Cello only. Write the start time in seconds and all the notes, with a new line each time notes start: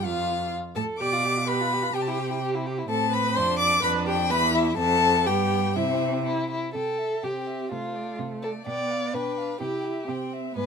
0.04 F2
0.76 A2
1.00 B2
1.95 C3
2.89 A2
3.36 F2
3.84 F2
4.30 E2
4.78 F2
5.26 G2
5.75 C3
6.75 C3
7.24 C3
7.71 C3
8.19 C3
8.67 B2
9.14 B2
9.61 C3
10.08 C3
10.56 G#2